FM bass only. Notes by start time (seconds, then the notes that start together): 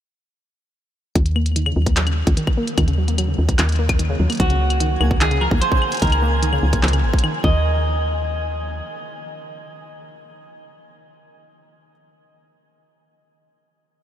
1.15 D#2
1.76 D#2
2.27 D#2
2.78 D#2
3.38 D#2
3.59 D#2
4.20 D#2
4.40 C#2
5.01 C#2
5.51 C#2
6.02 C#2
6.63 C#2
6.83 C#2
7.03 G#1
7.44 D#2